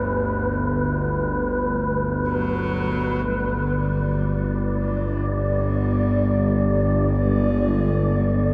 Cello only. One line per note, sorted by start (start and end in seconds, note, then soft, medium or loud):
2.28 3.29 F#3 medium
3.28 4.67 G3 medium
4.67 4.79 G3 medium
4.78 5.28 F#3 medium
5.26 6.72 G3 loud
6.74 7.23 G3 medium
7.22 8.22 G#3 loud
8.20 8.54 G3 medium